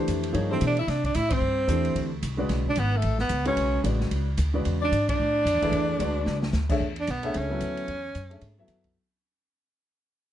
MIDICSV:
0, 0, Header, 1, 6, 480
1, 0, Start_track
1, 0, Tempo, 269300
1, 613, Time_signature, 4, 2, 24, 8
1, 18407, End_track
2, 0, Start_track
2, 0, Title_t, "Alto saxophone"
2, 0, Program_c, 0, 65
2, 898, Note_on_c, 0, 72, 64
2, 1167, Note_off_c, 0, 72, 0
2, 1202, Note_on_c, 0, 74, 71
2, 1393, Note_off_c, 0, 74, 0
2, 1404, Note_on_c, 0, 76, 83
2, 1595, Note_on_c, 0, 74, 78
2, 1621, Note_off_c, 0, 76, 0
2, 1871, Note_off_c, 0, 74, 0
2, 1880, Note_on_c, 0, 74, 74
2, 2062, Note_on_c, 0, 76, 83
2, 2088, Note_off_c, 0, 74, 0
2, 2318, Note_on_c, 0, 72, 70
2, 2345, Note_off_c, 0, 76, 0
2, 3770, Note_off_c, 0, 72, 0
2, 4803, Note_on_c, 0, 74, 67
2, 4968, Note_on_c, 0, 71, 84
2, 4995, Note_off_c, 0, 74, 0
2, 5287, Note_on_c, 0, 69, 80
2, 5313, Note_off_c, 0, 71, 0
2, 5718, Note_off_c, 0, 69, 0
2, 5734, Note_on_c, 0, 71, 64
2, 6166, Note_off_c, 0, 71, 0
2, 6196, Note_on_c, 0, 73, 68
2, 6816, Note_off_c, 0, 73, 0
2, 8586, Note_on_c, 0, 74, 86
2, 9031, Note_off_c, 0, 74, 0
2, 9070, Note_on_c, 0, 74, 89
2, 11587, Note_off_c, 0, 74, 0
2, 18407, End_track
3, 0, Start_track
3, 0, Title_t, "Grand piano"
3, 0, Program_c, 1, 0
3, 0, Note_on_c, 1, 52, 73
3, 0, Note_on_c, 1, 57, 62
3, 0, Note_on_c, 1, 62, 64
3, 0, Note_on_c, 1, 67, 64
3, 0, Note_on_c, 1, 72, 78
3, 558, Note_off_c, 1, 52, 0
3, 564, Note_off_c, 1, 62, 0
3, 566, Note_off_c, 1, 57, 0
3, 572, Note_off_c, 1, 67, 0
3, 575, Note_off_c, 1, 72, 0
3, 582, Note_on_c, 1, 53, 65
3, 584, Note_on_c, 1, 58, 55
3, 605, Note_on_c, 1, 63, 65
3, 611, Note_on_c, 1, 73, 74
3, 613, Note_on_c, 1, 68, 55
3, 855, Note_off_c, 1, 53, 0
3, 856, Note_off_c, 1, 58, 0
3, 867, Note_off_c, 1, 63, 0
3, 870, Note_off_c, 1, 73, 0
3, 871, Note_off_c, 1, 68, 0
3, 895, Note_on_c, 1, 52, 66
3, 906, Note_on_c, 1, 57, 64
3, 908, Note_on_c, 1, 67, 58
3, 910, Note_on_c, 1, 62, 60
3, 929, Note_on_c, 1, 72, 72
3, 1320, Note_off_c, 1, 52, 0
3, 1325, Note_off_c, 1, 57, 0
3, 1326, Note_off_c, 1, 67, 0
3, 1328, Note_off_c, 1, 62, 0
3, 1337, Note_off_c, 1, 72, 0
3, 2986, Note_on_c, 1, 52, 70
3, 2994, Note_on_c, 1, 57, 55
3, 3002, Note_on_c, 1, 62, 60
3, 3009, Note_on_c, 1, 67, 53
3, 3016, Note_on_c, 1, 72, 72
3, 3710, Note_off_c, 1, 52, 0
3, 3714, Note_off_c, 1, 57, 0
3, 3718, Note_off_c, 1, 62, 0
3, 3721, Note_off_c, 1, 67, 0
3, 3725, Note_off_c, 1, 72, 0
3, 4230, Note_on_c, 1, 56, 74
3, 4246, Note_on_c, 1, 49, 66
3, 4254, Note_on_c, 1, 66, 63
3, 4261, Note_on_c, 1, 71, 67
3, 4265, Note_on_c, 1, 74, 73
3, 4881, Note_off_c, 1, 56, 0
3, 4889, Note_off_c, 1, 49, 0
3, 4893, Note_off_c, 1, 66, 0
3, 4897, Note_off_c, 1, 71, 0
3, 4899, Note_off_c, 1, 74, 0
3, 6157, Note_on_c, 1, 56, 75
3, 6164, Note_on_c, 1, 49, 73
3, 6176, Note_on_c, 1, 66, 72
3, 6185, Note_on_c, 1, 71, 76
3, 6196, Note_on_c, 1, 73, 79
3, 6805, Note_off_c, 1, 56, 0
3, 6808, Note_off_c, 1, 49, 0
3, 6815, Note_off_c, 1, 66, 0
3, 6819, Note_off_c, 1, 71, 0
3, 6824, Note_off_c, 1, 73, 0
3, 6835, Note_on_c, 1, 56, 63
3, 6842, Note_on_c, 1, 49, 54
3, 6847, Note_on_c, 1, 66, 61
3, 6856, Note_on_c, 1, 71, 56
3, 6870, Note_on_c, 1, 74, 70
3, 7555, Note_off_c, 1, 56, 0
3, 7559, Note_off_c, 1, 49, 0
3, 7561, Note_off_c, 1, 66, 0
3, 7566, Note_off_c, 1, 71, 0
3, 7573, Note_off_c, 1, 74, 0
3, 8089, Note_on_c, 1, 49, 64
3, 8092, Note_on_c, 1, 56, 63
3, 8107, Note_on_c, 1, 66, 61
3, 8112, Note_on_c, 1, 74, 78
3, 8115, Note_on_c, 1, 71, 62
3, 8731, Note_off_c, 1, 49, 0
3, 8732, Note_off_c, 1, 56, 0
3, 8740, Note_off_c, 1, 66, 0
3, 8742, Note_off_c, 1, 74, 0
3, 8744, Note_off_c, 1, 71, 0
3, 10008, Note_on_c, 1, 52, 68
3, 10017, Note_on_c, 1, 57, 65
3, 10029, Note_on_c, 1, 62, 64
3, 10035, Note_on_c, 1, 68, 69
3, 10051, Note_on_c, 1, 71, 78
3, 10650, Note_off_c, 1, 52, 0
3, 10654, Note_off_c, 1, 57, 0
3, 10660, Note_off_c, 1, 62, 0
3, 10663, Note_off_c, 1, 68, 0
3, 10671, Note_off_c, 1, 71, 0
3, 10687, Note_on_c, 1, 62, 57
3, 10690, Note_on_c, 1, 56, 57
3, 10703, Note_on_c, 1, 66, 55
3, 10711, Note_on_c, 1, 71, 56
3, 10716, Note_on_c, 1, 74, 74
3, 11400, Note_off_c, 1, 62, 0
3, 11402, Note_off_c, 1, 56, 0
3, 11408, Note_off_c, 1, 66, 0
3, 11412, Note_off_c, 1, 71, 0
3, 11415, Note_off_c, 1, 74, 0
3, 11929, Note_on_c, 1, 57, 70
3, 11937, Note_on_c, 1, 62, 75
3, 11955, Note_on_c, 1, 73, 73
3, 11956, Note_on_c, 1, 68, 73
3, 11975, Note_on_c, 1, 76, 82
3, 12129, Note_off_c, 1, 57, 0
3, 12133, Note_off_c, 1, 62, 0
3, 12142, Note_off_c, 1, 68, 0
3, 12142, Note_off_c, 1, 73, 0
3, 12151, Note_off_c, 1, 76, 0
3, 12891, Note_on_c, 1, 57, 72
3, 12909, Note_on_c, 1, 62, 63
3, 12914, Note_on_c, 1, 68, 65
3, 12926, Note_on_c, 1, 73, 71
3, 12930, Note_on_c, 1, 76, 80
3, 13347, Note_off_c, 1, 57, 0
3, 13354, Note_on_c, 1, 59, 72
3, 13356, Note_off_c, 1, 62, 0
3, 13358, Note_off_c, 1, 68, 0
3, 13361, Note_on_c, 1, 54, 73
3, 13365, Note_off_c, 1, 73, 0
3, 13366, Note_off_c, 1, 76, 0
3, 13370, Note_on_c, 1, 64, 73
3, 13375, Note_on_c, 1, 69, 72
3, 13380, Note_on_c, 1, 71, 78
3, 14002, Note_off_c, 1, 59, 0
3, 14005, Note_off_c, 1, 54, 0
3, 14010, Note_off_c, 1, 64, 0
3, 14012, Note_off_c, 1, 69, 0
3, 14015, Note_off_c, 1, 71, 0
3, 14790, Note_on_c, 1, 57, 53
3, 14798, Note_on_c, 1, 62, 44
3, 14803, Note_on_c, 1, 68, 49
3, 14817, Note_on_c, 1, 73, 45
3, 14821, Note_on_c, 1, 76, 56
3, 15256, Note_off_c, 1, 57, 0
3, 15261, Note_off_c, 1, 62, 0
3, 15263, Note_off_c, 1, 68, 0
3, 15270, Note_off_c, 1, 73, 0
3, 15272, Note_off_c, 1, 76, 0
3, 15297, Note_on_c, 1, 54, 77
3, 15304, Note_on_c, 1, 59, 68
3, 15313, Note_on_c, 1, 64, 66
3, 15317, Note_on_c, 1, 69, 71
3, 15319, Note_on_c, 1, 76, 82
3, 15934, Note_off_c, 1, 54, 0
3, 15937, Note_off_c, 1, 59, 0
3, 15942, Note_off_c, 1, 64, 0
3, 15944, Note_off_c, 1, 69, 0
3, 15945, Note_off_c, 1, 76, 0
3, 18407, End_track
4, 0, Start_track
4, 0, Title_t, "Tenor saxophone"
4, 0, Program_c, 2, 66
4, 934, Note_on_c, 2, 60, 77
4, 1187, Note_off_c, 2, 60, 0
4, 1194, Note_on_c, 2, 62, 93
4, 1401, Note_off_c, 2, 62, 0
4, 1428, Note_on_c, 2, 64, 79
4, 1584, Note_on_c, 2, 62, 97
4, 1611, Note_off_c, 2, 64, 0
4, 1865, Note_off_c, 2, 62, 0
4, 1880, Note_on_c, 2, 62, 87
4, 2060, Note_on_c, 2, 64, 97
4, 2087, Note_off_c, 2, 62, 0
4, 2363, Note_on_c, 2, 60, 89
4, 2390, Note_off_c, 2, 64, 0
4, 3793, Note_off_c, 2, 60, 0
4, 4797, Note_on_c, 2, 62, 99
4, 4970, Note_on_c, 2, 59, 94
4, 4997, Note_off_c, 2, 62, 0
4, 5290, Note_on_c, 2, 57, 81
4, 5316, Note_off_c, 2, 59, 0
4, 5697, Note_off_c, 2, 57, 0
4, 5708, Note_on_c, 2, 59, 86
4, 6152, Note_off_c, 2, 59, 0
4, 6183, Note_on_c, 2, 61, 86
4, 6809, Note_off_c, 2, 61, 0
4, 8624, Note_on_c, 2, 62, 106
4, 9051, Note_off_c, 2, 62, 0
4, 9087, Note_on_c, 2, 62, 106
4, 11596, Note_off_c, 2, 62, 0
4, 12488, Note_on_c, 2, 62, 90
4, 12666, Note_on_c, 2, 59, 82
4, 12692, Note_off_c, 2, 62, 0
4, 13139, Note_on_c, 2, 61, 95
4, 13166, Note_off_c, 2, 59, 0
4, 15516, Note_off_c, 2, 61, 0
4, 18407, End_track
5, 0, Start_track
5, 0, Title_t, "Upright bass"
5, 0, Program_c, 3, 32
5, 143, Note_on_c, 3, 41, 85
5, 597, Note_off_c, 3, 41, 0
5, 607, Note_on_c, 3, 43, 82
5, 1076, Note_off_c, 3, 43, 0
5, 1094, Note_on_c, 3, 47, 95
5, 1548, Note_off_c, 3, 47, 0
5, 1559, Note_on_c, 3, 48, 77
5, 2032, Note_off_c, 3, 48, 0
5, 2051, Note_on_c, 3, 45, 91
5, 2505, Note_off_c, 3, 45, 0
5, 2515, Note_on_c, 3, 43, 72
5, 2983, Note_off_c, 3, 43, 0
5, 2994, Note_on_c, 3, 40, 85
5, 3470, Note_off_c, 3, 40, 0
5, 3485, Note_on_c, 3, 38, 84
5, 3956, Note_off_c, 3, 38, 0
5, 3968, Note_on_c, 3, 36, 83
5, 4430, Note_off_c, 3, 36, 0
5, 4441, Note_on_c, 3, 35, 65
5, 4914, Note_off_c, 3, 35, 0
5, 4944, Note_on_c, 3, 32, 93
5, 5401, Note_off_c, 3, 32, 0
5, 5412, Note_on_c, 3, 33, 84
5, 5868, Note_off_c, 3, 33, 0
5, 5879, Note_on_c, 3, 37, 80
5, 6337, Note_off_c, 3, 37, 0
5, 6348, Note_on_c, 3, 35, 74
5, 6828, Note_off_c, 3, 35, 0
5, 6843, Note_on_c, 3, 33, 93
5, 7315, Note_off_c, 3, 33, 0
5, 7323, Note_on_c, 3, 37, 81
5, 7795, Note_off_c, 3, 37, 0
5, 7805, Note_on_c, 3, 38, 85
5, 8277, Note_off_c, 3, 38, 0
5, 8304, Note_on_c, 3, 40, 72
5, 8759, Note_off_c, 3, 40, 0
5, 8769, Note_on_c, 3, 44, 87
5, 9238, Note_off_c, 3, 44, 0
5, 9257, Note_on_c, 3, 45, 76
5, 9710, Note_off_c, 3, 45, 0
5, 9721, Note_on_c, 3, 42, 77
5, 9884, Note_off_c, 3, 42, 0
5, 9884, Note_on_c, 3, 40, 56
5, 10023, Note_off_c, 3, 40, 0
5, 10033, Note_on_c, 3, 38, 64
5, 10180, Note_off_c, 3, 38, 0
5, 10191, Note_on_c, 3, 40, 79
5, 10668, Note_off_c, 3, 40, 0
5, 10682, Note_on_c, 3, 38, 86
5, 11150, Note_off_c, 3, 38, 0
5, 11161, Note_on_c, 3, 37, 81
5, 11627, Note_off_c, 3, 37, 0
5, 11638, Note_on_c, 3, 38, 82
5, 12111, Note_off_c, 3, 38, 0
5, 12126, Note_on_c, 3, 40, 79
5, 12596, Note_off_c, 3, 40, 0
5, 12623, Note_on_c, 3, 35, 90
5, 13084, Note_off_c, 3, 35, 0
5, 13104, Note_on_c, 3, 37, 84
5, 13559, Note_off_c, 3, 37, 0
5, 13570, Note_on_c, 3, 38, 77
5, 14037, Note_off_c, 3, 38, 0
5, 14045, Note_on_c, 3, 40, 70
5, 14515, Note_off_c, 3, 40, 0
5, 14529, Note_on_c, 3, 42, 81
5, 14997, Note_off_c, 3, 42, 0
5, 15005, Note_on_c, 3, 44, 84
5, 15462, Note_off_c, 3, 44, 0
5, 15473, Note_on_c, 3, 42, 83
5, 15949, Note_off_c, 3, 42, 0
5, 18407, End_track
6, 0, Start_track
6, 0, Title_t, "Drums"
6, 137, Note_on_c, 9, 44, 64
6, 137, Note_on_c, 9, 51, 73
6, 316, Note_off_c, 9, 44, 0
6, 316, Note_off_c, 9, 51, 0
6, 418, Note_on_c, 9, 51, 54
6, 596, Note_off_c, 9, 51, 0
6, 614, Note_on_c, 9, 51, 64
6, 792, Note_off_c, 9, 51, 0
6, 1085, Note_on_c, 9, 44, 55
6, 1085, Note_on_c, 9, 51, 67
6, 1263, Note_off_c, 9, 44, 0
6, 1263, Note_off_c, 9, 51, 0
6, 1367, Note_on_c, 9, 51, 45
6, 1545, Note_off_c, 9, 51, 0
6, 1569, Note_on_c, 9, 51, 61
6, 1577, Note_on_c, 9, 38, 36
6, 1748, Note_off_c, 9, 51, 0
6, 1755, Note_off_c, 9, 38, 0
6, 1857, Note_on_c, 9, 36, 54
6, 1863, Note_on_c, 9, 51, 46
6, 2035, Note_off_c, 9, 36, 0
6, 2041, Note_off_c, 9, 51, 0
6, 2041, Note_on_c, 9, 44, 57
6, 2041, Note_on_c, 9, 51, 71
6, 2219, Note_off_c, 9, 44, 0
6, 2219, Note_off_c, 9, 51, 0
6, 2325, Note_on_c, 9, 51, 81
6, 2333, Note_on_c, 9, 36, 91
6, 2503, Note_off_c, 9, 51, 0
6, 2511, Note_off_c, 9, 36, 0
6, 3003, Note_on_c, 9, 44, 61
6, 3003, Note_on_c, 9, 51, 60
6, 3181, Note_off_c, 9, 44, 0
6, 3181, Note_off_c, 9, 51, 0
6, 3292, Note_on_c, 9, 51, 41
6, 3471, Note_off_c, 9, 51, 0
6, 3490, Note_on_c, 9, 51, 64
6, 3668, Note_off_c, 9, 51, 0
6, 3967, Note_on_c, 9, 44, 57
6, 3967, Note_on_c, 9, 51, 71
6, 4145, Note_off_c, 9, 44, 0
6, 4145, Note_off_c, 9, 51, 0
6, 4441, Note_on_c, 9, 51, 56
6, 4448, Note_on_c, 9, 38, 37
6, 4619, Note_off_c, 9, 51, 0
6, 4626, Note_off_c, 9, 38, 0
6, 4729, Note_on_c, 9, 36, 50
6, 4908, Note_off_c, 9, 36, 0
6, 4911, Note_on_c, 9, 44, 53
6, 4911, Note_on_c, 9, 51, 67
6, 5090, Note_off_c, 9, 44, 0
6, 5090, Note_off_c, 9, 51, 0
6, 5383, Note_on_c, 9, 51, 65
6, 5561, Note_off_c, 9, 51, 0
6, 5680, Note_on_c, 9, 38, 37
6, 5858, Note_off_c, 9, 38, 0
6, 5867, Note_on_c, 9, 44, 65
6, 5867, Note_on_c, 9, 51, 69
6, 6046, Note_off_c, 9, 44, 0
6, 6046, Note_off_c, 9, 51, 0
6, 6156, Note_on_c, 9, 51, 50
6, 6334, Note_off_c, 9, 51, 0
6, 6359, Note_on_c, 9, 51, 64
6, 6537, Note_off_c, 9, 51, 0
6, 6851, Note_on_c, 9, 44, 51
6, 6851, Note_on_c, 9, 51, 69
6, 7029, Note_off_c, 9, 44, 0
6, 7029, Note_off_c, 9, 51, 0
6, 7138, Note_on_c, 9, 38, 37
6, 7316, Note_off_c, 9, 38, 0
6, 7328, Note_on_c, 9, 51, 66
6, 7506, Note_off_c, 9, 51, 0
6, 7797, Note_on_c, 9, 44, 66
6, 7797, Note_on_c, 9, 51, 76
6, 7976, Note_off_c, 9, 44, 0
6, 7976, Note_off_c, 9, 51, 0
6, 8289, Note_on_c, 9, 51, 61
6, 8468, Note_off_c, 9, 51, 0
6, 8778, Note_on_c, 9, 44, 51
6, 8778, Note_on_c, 9, 51, 67
6, 8956, Note_off_c, 9, 44, 0
6, 8956, Note_off_c, 9, 51, 0
6, 9068, Note_on_c, 9, 36, 76
6, 9070, Note_on_c, 9, 51, 71
6, 9247, Note_off_c, 9, 36, 0
6, 9248, Note_off_c, 9, 51, 0
6, 9742, Note_on_c, 9, 44, 65
6, 9742, Note_on_c, 9, 51, 71
6, 9920, Note_off_c, 9, 44, 0
6, 9920, Note_off_c, 9, 51, 0
6, 10022, Note_on_c, 9, 51, 52
6, 10023, Note_on_c, 9, 36, 59
6, 10201, Note_off_c, 9, 36, 0
6, 10201, Note_off_c, 9, 51, 0
6, 10204, Note_on_c, 9, 51, 57
6, 10382, Note_off_c, 9, 51, 0
6, 10692, Note_on_c, 9, 44, 50
6, 10692, Note_on_c, 9, 51, 67
6, 10871, Note_off_c, 9, 44, 0
6, 10871, Note_off_c, 9, 51, 0
6, 11164, Note_on_c, 9, 38, 48
6, 11342, Note_off_c, 9, 38, 0
6, 11454, Note_on_c, 9, 38, 62
6, 11632, Note_off_c, 9, 38, 0
6, 11634, Note_on_c, 9, 44, 60
6, 11642, Note_on_c, 9, 38, 56
6, 11813, Note_off_c, 9, 44, 0
6, 11820, Note_off_c, 9, 38, 0
6, 11932, Note_on_c, 9, 49, 73
6, 11935, Note_on_c, 9, 36, 81
6, 12111, Note_off_c, 9, 49, 0
6, 12114, Note_off_c, 9, 36, 0
6, 12405, Note_on_c, 9, 51, 41
6, 12584, Note_off_c, 9, 51, 0
6, 12607, Note_on_c, 9, 44, 50
6, 12607, Note_on_c, 9, 51, 64
6, 12785, Note_off_c, 9, 44, 0
6, 12785, Note_off_c, 9, 51, 0
6, 12885, Note_on_c, 9, 51, 47
6, 13063, Note_off_c, 9, 51, 0
6, 13085, Note_on_c, 9, 51, 63
6, 13263, Note_off_c, 9, 51, 0
6, 13556, Note_on_c, 9, 44, 63
6, 13556, Note_on_c, 9, 51, 68
6, 13734, Note_off_c, 9, 44, 0
6, 13734, Note_off_c, 9, 51, 0
6, 13853, Note_on_c, 9, 51, 48
6, 14031, Note_off_c, 9, 51, 0
6, 14044, Note_on_c, 9, 51, 56
6, 14222, Note_off_c, 9, 51, 0
6, 14522, Note_on_c, 9, 44, 59
6, 14522, Note_on_c, 9, 51, 63
6, 14701, Note_off_c, 9, 44, 0
6, 14701, Note_off_c, 9, 51, 0
6, 14811, Note_on_c, 9, 51, 46
6, 14989, Note_off_c, 9, 51, 0
6, 14996, Note_on_c, 9, 51, 66
6, 15174, Note_off_c, 9, 51, 0
6, 15468, Note_on_c, 9, 44, 61
6, 15468, Note_on_c, 9, 51, 76
6, 15646, Note_off_c, 9, 44, 0
6, 15646, Note_off_c, 9, 51, 0
6, 15755, Note_on_c, 9, 51, 47
6, 15767, Note_on_c, 9, 36, 56
6, 15933, Note_off_c, 9, 51, 0
6, 15946, Note_off_c, 9, 36, 0
6, 18407, End_track
0, 0, End_of_file